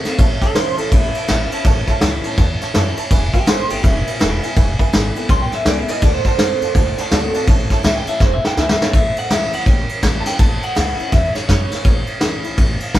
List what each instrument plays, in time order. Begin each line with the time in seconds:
0.05 steel-string acoustic guitar C4 F#4, muted upright bass stroke, snare, ride
0.19 upright bass A1, steel-string acoustic guitar A2, honky-tonk piano C#5 E5 A5, kick, ride
0.41 clean electric guitar A4, honky-tonk piano C#5 E5 A5, muted upright bass stroke, kick, snare, ride
0.55 upright bass C#2, steel-string acoustic guitar E3 G3 C#4 E4, clean electric guitar C5, honky-tonk piano E5 A5, snare, ride
0.77 upright bass C#2, steel-string acoustic guitar C#4 E4, clean electric guitar A4, honky-tonk piano C#5 E5 A5, ride
0.92 upright bass A1, steel-string acoustic guitar E2, clean electric guitar E4, honky-tonk piano C#5 E5 A5, kick, snare, ride
1.15 honky-tonk piano C#5 E5 A5, muted upright bass stroke, ride
1.28 upright bass A1, steel-string acoustic guitar E3 G3 C#4 E4, honky-tonk piano C#5 E5 A5, snare, ride
1.52 steel-string acoustic guitar C#4 E4, honky-tonk piano C#5 E5 A5, muted upright bass stroke, ride
1.64 upright bass A1, steel-string acoustic guitar A2, honky-tonk piano C#5 E5 A5, kick, ride
1.87 honky-tonk piano C#5 E5 A5, muted upright bass stroke, kick, snare, ride
2.01 upright bass C#2, steel-string acoustic guitar E3 G3 C#4 E4, honky-tonk piano C#5 E5 A5, snare, ride
2.24 steel-string acoustic guitar C#4 E4, honky-tonk piano C#5 E5 A5, muted upright bass stroke, ride
2.38 upright bass E2, steel-string acoustic guitar E2, honky-tonk piano C#5 E5 A5, kick, snare, ride
2.61 honky-tonk piano C#5 E5 A5, muted upright bass stroke, snare, ride
2.74 upright bass F#2, steel-string acoustic guitar E3 G3 C#4 E4, honky-tonk piano C#5 E5 A5, snare, ride
2.97 steel-string acoustic guitar C#4 E4, honky-tonk piano C#5 E5 A5, muted upright bass stroke, ride
3.11 upright bass E1, steel-string acoustic guitar E2, honky-tonk piano B4 E5 G#5, kick, ride
3.33 clean electric guitar G4, honky-tonk piano B4 E5 G#5, muted upright bass stroke, kick, ride
3.46 upright bass G#1, steel-string acoustic guitar D3 G#3 B3 E4, clean electric guitar C5, snare, ride
3.69 upright bass G#1, steel-string acoustic guitar B3 E4, clean electric guitar G4, honky-tonk piano B4 E5 G#5, ride
3.83 upright bass E1, steel-string acoustic guitar B2, clean electric guitar E4, honky-tonk piano B4 E5 G#5, kick, snare, ride
4.07 honky-tonk piano B4 E5 G#5, muted upright bass stroke, ride
4.19 upright bass E1, steel-string acoustic guitar D3 G#3 B3 E4, honky-tonk piano B4 E5 G#5, snare, ride
4.42 steel-string acoustic guitar B3 E4, honky-tonk piano B4 E5 G#5, muted upright bass stroke, ride
4.56 upright bass E1, steel-string acoustic guitar E2, honky-tonk piano B4 E5 G#5, kick, ride
4.79 honky-tonk piano B4 E5 G#5, muted upright bass stroke, kick, ride
4.93 upright bass G#1, steel-string acoustic guitar D3 G#3 B3 E4, honky-tonk piano B4 E5, snare, ride
5.15 steel-string acoustic guitar B3 E4, honky-tonk piano B4 E5 G#5, muted upright bass stroke, ride
5.29 upright bass B1, steel-string acoustic guitar B2, honky-tonk piano B4 E5, clean electric guitar C6, kick, snare, ride
5.42 clean electric guitar G5
5.52 honky-tonk piano B4 E5 G#5, clean electric guitar E5, muted upright bass stroke, snare, ride
5.65 upright bass C#2, steel-string acoustic guitar D3 G#3 B3 E4, honky-tonk piano B4 E5 G#5, clean electric guitar D5, snare, ride
5.79 clean electric guitar E5
5.88 steel-string acoustic guitar B3 E4, honky-tonk piano B4 E5 G#5, clean electric guitar D#5, muted upright bass stroke, snare, ride
6.02 upright bass D2, steel-string acoustic guitar D3, clean electric guitar D5, honky-tonk piano D5 F#5 A5, kick, ride
6.14 clean electric guitar C5
6.25 clean electric guitar C5, honky-tonk piano D5 F#5 A5, muted upright bass stroke, kick, snare, ride
6.39 upright bass F#2, steel-string acoustic guitar D3 A3 C4 F#4, honky-tonk piano D5 F#5 A5, snare, ride
6.61 upright bass F#2, steel-string acoustic guitar C4 F#4, honky-tonk piano D5 F#5 A5, ride
6.75 upright bass D2, steel-string acoustic guitar A2, honky-tonk piano D5 F#5 A5, kick, ride
6.98 honky-tonk piano D5 F#5 A5, muted upright bass stroke, snare, ride
7.11 upright bass D2, steel-string acoustic guitar D3 A3 C4 F#4, honky-tonk piano D5 F#5 A5, snare, ride
7.34 steel-string acoustic guitar C4 F#4, honky-tonk piano D5 F#5 A5, muted upright bass stroke, ride
7.47 upright bass A1, steel-string acoustic guitar A2, honky-tonk piano C#5 E5 A5, kick, ride
7.70 honky-tonk piano C#5 E5 A5, muted upright bass stroke, kick, snare, ride
7.83 upright bass C#2, steel-string acoustic guitar E3 G3 C#4 E4, honky-tonk piano C#5, clean electric guitar E5, snare, ride
7.96 clean electric guitar G5
8.07 steel-string acoustic guitar C#4 E4, honky-tonk piano C#5 E5 A5, clean electric guitar E5, muted upright bass stroke, ride
8.20 upright bass E1, honky-tonk piano B4 G#5, clean electric guitar C5, kick, snare
8.33 clean electric guitar E5
8.43 honky-tonk piano B4 E5 G#5, clean electric guitar G5, muted upright bass stroke, snare
8.57 upright bass C#2, steel-string acoustic guitar D3 G#3 B3 E4, honky-tonk piano B4 E5 G#5, clean electric guitar E5, snare
8.62 clean electric guitar E5
8.69 clean electric guitar E5, snare
8.80 steel-string acoustic guitar B3 E4, honky-tonk piano B4 E5 G#5, clean electric guitar C#5, muted upright bass stroke, snare
8.93 upright bass A1, steel-string acoustic guitar A2, clean electric guitar E5, kick, snare, ride
9.16 clean electric guitar F#5, muted upright bass stroke, ride
9.30 upright bass C#2, steel-string acoustic guitar E3 G3 C#4 E4, clean electric guitar E5, snare, ride
9.53 upright bass C#2, steel-string acoustic guitar C#4 E4, clean electric guitar F#5, ride
9.66 upright bass A1, steel-string acoustic guitar E2, clean electric guitar G5, kick, ride
9.89 muted upright bass stroke, ride
10.03 upright bass A1, steel-string acoustic guitar E3 G3 C#4 E4, kick, snare, ride
10.20 clean electric guitar A5
10.26 steel-string acoustic guitar C#4 E4, clean electric guitar G5, muted upright bass stroke, snare, ride
10.39 upright bass A1, steel-string acoustic guitar A2, clean electric guitar A5, kick, ride
10.63 clean electric guitar F#5, muted upright bass stroke, ride
10.75 upright bass C#2, steel-string acoustic guitar E3 G3 C#4 E4, snare, ride
10.99 steel-string acoustic guitar C#4 E4, muted upright bass stroke, ride
11.12 upright bass E2, steel-string acoustic guitar E2, clean electric guitar E5, kick, snare, ride
11.35 clean electric guitar C#5, muted upright bass stroke, snare, ride
11.48 upright bass F#2, steel-string acoustic guitar E3 G3 C#4 E4, clean electric guitar C#5, kick, snare, ride
11.71 steel-string acoustic guitar C#4 E4, muted upright bass stroke, snare, ride
11.84 upright bass A1, steel-string acoustic guitar A2, kick, ride
12.07 muted upright bass stroke, ride
12.21 upright bass C#2, steel-string acoustic guitar E3 G3 C#4 E4, snare, ride
12.44 upright bass C#2, steel-string acoustic guitar C#4 E4, ride
12.58 upright bass A1, steel-string acoustic guitar E2, kick, ride
12.80 muted upright bass stroke, ride
12.94 upright bass A1, steel-string acoustic guitar E3 G3 C#4 E4, kick, snare, ride